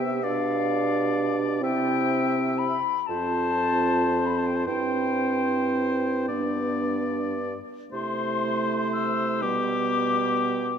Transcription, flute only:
0.00 0.24 G5 medium
0.22 1.36 F5 medium
1.62 2.59 G5 medium
2.58 3.08 B5 medium
3.06 4.27 A5 medium
4.26 4.39 B5 soft
4.37 4.47 A5 soft
4.46 4.57 G5 soft
4.55 4.65 A5 soft
4.66 6.25 G5 medium
7.93 8.89 C6 medium
8.92 9.43 E6 medium
9.42 10.79 D6 medium

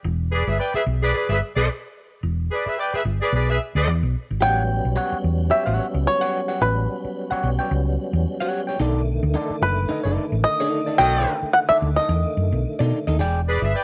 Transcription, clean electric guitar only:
4.41 4.61 G4 medium
4.41 4.62 C#5 medium
4.41 4.62 F#5 medium
4.96 5.16 G4 medium
4.96 5.17 C#5 medium
4.96 5.17 F#5 medium
5.50 5.66 G4 medium
5.50 5.65 C#5 medium
5.50 5.65 G5 medium
5.66 5.86 G4 medium
5.66 5.86 C#5 medium
5.66 5.86 F#5 medium
6.21 6.41 G4 medium
6.21 6.40 C#5 medium
6.21 6.39 F#5 medium
6.48 6.63 G4 medium
6.48 6.62 C#5 medium
6.48 6.62 F#5 medium
7.31 7.50 G4 medium
7.31 7.50 C#5 medium
7.31 7.49 F#5 medium
7.59 7.73 G4 medium
7.59 7.73 C#5 medium
7.59 7.72 G5 medium
8.40 8.61 G4 medium
8.40 8.61 C#5 medium
8.40 8.60 F#5 medium
8.67 8.80 G4 soft
8.67 8.81 C#5 medium
8.67 8.81 G5 medium
8.79 9.00 D#4 medium
8.79 9.00 A4 medium
8.79 9.01 D5 loud
9.34 9.55 D#4 medium
9.34 9.55 A4 medium
9.34 9.56 D5 medium
9.89 10.05 D#4 medium
9.89 10.04 A4 medium
9.89 10.03 D#5 medium
10.03 10.25 D#4 medium
10.03 10.25 A4 medium
10.03 10.24 D5 medium
10.60 10.80 D#4 medium
10.60 10.80 A4 medium
10.60 10.80 D5 medium
10.86 11.02 D#4 soft
10.86 11.01 A4 medium
10.86 11.00 D5 medium
11.70 11.89 D#4 medium
11.70 11.88 A4 medium
11.70 11.88 D5 medium
11.97 12.12 D#4 medium
11.97 12.12 A4 medium
11.97 12.11 D#5 medium
12.79 12.98 D#4 medium
12.79 12.98 A4 medium
12.79 12.97 D5 medium
13.07 13.21 D#4 medium
13.07 13.19 A4 medium
13.07 13.20 D#5 medium
13.19 13.39 G#4 medium
13.19 13.40 D5 medium
13.19 13.40 G5 medium

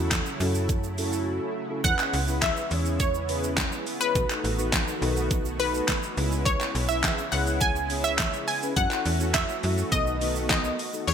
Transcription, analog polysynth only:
0.00 0.31 C#4 medium
0.00 0.31 E4 medium
0.00 0.31 F#4 medium
0.00 0.31 A4 medium
0.41 0.85 C#4 medium
0.41 0.85 E4 medium
0.41 0.85 F#4 medium
0.41 0.86 A4 loud
0.98 1.54 C#4 loud
0.98 1.54 E4 medium
0.98 1.54 F#4 medium
0.98 1.54 A4 loud
1.70 1.81 C#4 medium
1.70 1.81 E4 medium
1.70 1.81 F#4 medium
1.70 1.81 A4 medium
1.85 2.18 C#4 medium
1.85 2.18 E4 medium
1.85 2.18 B4 medium
2.28 2.61 C#4 medium
2.28 2.61 E4 medium
2.28 2.61 G#4 medium
2.28 2.62 B4 loud
2.71 3.16 C#4 medium
2.71 3.16 E4 medium
2.71 3.16 G#4 medium
2.71 3.16 C#5 medium
3.29 3.85 C#4 medium
3.29 3.85 E4 medium
3.29 3.85 G#4 medium
3.29 3.85 B4 medium
4.01 4.12 C#4 medium
4.01 4.12 E4 medium
4.01 4.12 G#4 medium
4.01 4.12 C#5 medium
4.15 4.49 A4 medium
4.58 4.92 D#4 medium
4.58 4.92 F#4 medium
4.58 4.92 A4 medium
4.58 4.92 B4 medium
5.01 5.46 D#4 medium
5.01 5.46 F#4 medium
5.01 5.47 A4 medium
5.01 5.47 B4 loud
5.59 6.15 D#4 medium
5.59 6.16 F#4 medium
5.59 6.16 A4 medium
5.59 6.16 B4 medium
6.17 6.75 C#4 medium
6.17 6.75 E4 medium
6.17 6.75 G#4 medium
6.17 6.75 B4 medium
6.89 7.23 C#4 medium
6.89 7.23 E4 medium
6.89 7.23 G#4 medium
6.89 7.23 B4 medium
7.33 7.77 C#4 medium
7.33 7.77 E4 medium
7.33 7.78 G#4 medium
7.33 7.78 C#5 medium
7.90 8.46 C#4 medium
7.90 8.46 E4 medium
7.90 8.46 G#4 medium
7.90 8.46 C#5 medium
8.62 8.74 C#4 medium
8.62 8.74 E4 medium
8.62 8.74 G#4 medium
8.62 8.74 B4 medium
8.77 9.10 E4 medium
8.77 9.11 A4 medium
9.20 9.54 C#4 medium
9.20 9.54 E4 medium
9.20 9.54 F#4 medium
9.20 9.54 A4 medium
9.63 9.92 C#4 medium
9.63 9.92 E4 medium
9.63 9.91 F#4 medium
9.63 9.91 A4 medium
9.92 10.15 B3 medium
9.92 10.15 D#4 medium
9.92 10.15 A4 medium
10.21 10.77 B3 medium
10.21 10.77 D#4 medium
10.21 10.77 F#4 medium
10.21 10.77 A4 medium
10.93 11.04 B3 medium
10.93 11.04 D#4 medium
10.93 11.04 F#4 medium
10.93 11.05 A4 medium
11.08 11.14 B3 medium
11.08 11.14 C#4 medium
11.08 11.14 E4 medium
11.08 11.14 G#4 medium

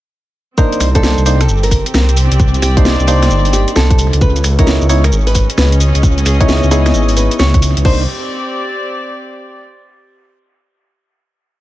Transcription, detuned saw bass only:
0.80 1.15 C2 loud
1.18 1.47 C2 loud
1.49 1.83 G1 medium
1.94 2.29 C2 medium
2.32 2.61 C2 medium
2.62 2.97 C2 loud
3.00 3.29 C2 loud
3.30 3.65 G1 medium
3.76 4.11 C2 loud
4.13 4.43 C#2 medium
4.44 4.79 C#2 loud
4.81 5.11 C#2 loud
5.12 5.47 G#1 medium
5.58 5.92 C#2 medium
5.95 6.24 C#2 medium
6.26 6.60 C#2 loud
6.63 6.92 C#2 loud
6.94 7.29 G#1 medium
7.40 7.74 C#2 loud
7.77 7.84 C#2 medium
7.85 8.06 C2 loud

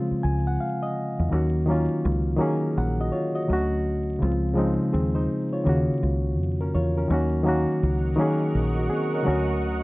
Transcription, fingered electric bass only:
0.12 muted fingered electric bass stroke soft
0.24 0.57 C#2 medium
1.19 1.31 E2 medium
1.32 1.87 D#2 loud
2.05 2.38 C#2 loud
2.78 3.10 A#1 medium
3.50 4.17 D2 medium
4.22 4.76 C#2 loud
4.94 5.27 D#2 medium
5.67 5.87 D#2 medium
5.90 muted fingered electric bass stroke soft
6.03 6.39 C#2 medium
6.39 6.71 F2 medium
6.75 7.07 E2 medium
7.10 7.65 D#2 loud
7.83 8.16 C#2 medium
8.55 8.88 A#1 medium
9.28 9.83 D2 loud

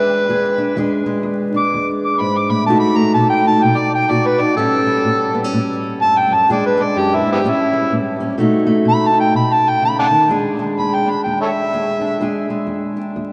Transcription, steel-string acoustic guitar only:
0.00 0.25 E2 medium
0.00 0.75 G#3 medium
0.00 0.57 D4 medium
0.00 0.28 G#4 medium
0.29 0.73 E2 medium
0.29 0.75 G#4 medium
0.58 0.75 D4 medium
0.76 1.21 E2 medium
0.76 1.05 G#3 medium
0.76 1.53 D4 medium
0.76 2.66 G#4 medium
1.06 2.66 G#3 medium
1.23 1.68 E2 medium
1.54 2.66 D4 medium
1.74 2.17 E2 medium
2.20 2.49 G#2 medium
2.49 2.67 A2 medium
2.68 3.12 B2 medium
2.68 2.96 A3 medium
2.68 3.44 D#4 medium
2.68 4.10 F#4 medium
2.96 4.56 A3 medium
3.15 3.59 B2 medium
3.45 4.39 D#4 medium
3.64 4.07 B2 medium
4.11 4.55 B2 medium
4.11 4.56 F#4 medium
4.40 4.57 D#4 medium
4.57 5.02 A2 medium
4.57 4.85 G3 medium
4.57 5.34 C#4 medium
4.57 6.47 G4 medium
4.87 6.49 G3 medium
5.05 5.49 A2 medium
5.34 5.44 B3 medium
5.44 6.49 C#4 medium
5.53 5.97 A2 medium
6.02 6.31 G2 medium
6.31 6.49 F#2 medium
6.49 6.93 E2 medium
6.49 6.76 G#3 medium
6.49 7.42 D4 medium
6.49 7.43 G#4 medium
6.78 7.42 G#3 medium
6.96 7.25 F#2 medium
7.26 7.45 G#2 medium
7.44 7.88 A2 medium
7.44 7.72 G3 medium
7.44 8.19 C#4 medium
7.73 8.38 G3 medium
7.91 8.36 A2 medium
8.20 8.37 C#4 medium
8.38 8.82 B2 medium
8.38 8.65 A3 medium
8.38 9.13 D#4 medium
8.38 10.28 F#4 medium
8.67 10.27 A3 medium
8.85 9.30 B2 medium
9.14 10.27 D#4 medium
9.34 9.78 B2 medium
9.82 10.11 C#3 medium
10.11 10.30 D#3 medium
10.28 10.73 E2 medium
10.28 10.59 G#3 medium
10.28 11.05 D4 medium
10.28 11.73 G#4 medium
10.59 12.20 G#3 medium
10.78 11.22 E2 medium
11.06 12.01 D4 soft
11.26 11.70 E2 medium
11.73 12.17 E2 medium
11.73 12.22 G#4 medium
12.01 12.21 D4 medium
12.20 12.65 E2 medium
12.20 12.50 G#3 medium
12.20 12.96 D4 medium
12.20 13.33 G#4 medium
12.50 13.33 G#3 medium
12.67 13.12 E2 medium
12.97 13.33 D4 soft
13.16 13.33 E2 medium

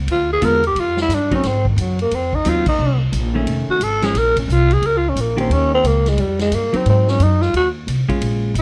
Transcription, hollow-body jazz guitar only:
0.41 0.61 D3 medium
0.41 0.61 G#3 medium
0.41 0.62 B3 medium
0.41 0.62 F4 medium
1.31 1.43 F#3 medium
1.31 1.43 C4 medium
1.31 1.43 D#4 medium
2.46 2.65 F#3 medium
2.46 2.65 C4 medium
2.46 2.66 D#4 medium
3.34 3.79 D#3 medium
3.34 3.79 A3 medium
3.34 3.79 C#4 medium
4.02 4.14 F3 medium
4.02 4.14 G#3 medium
4.02 4.14 C#4 medium
5.37 5.81 D#3 medium
5.37 5.82 A#3 medium
5.37 5.82 C#4 medium
5.37 5.82 G4 medium
6.73 7.17 F#3 medium
6.73 7.17 C4 medium
6.73 7.18 D#4 medium
8.09 8.53 G#3 medium
8.09 8.53 C#4 medium
8.09 8.53 F4 medium

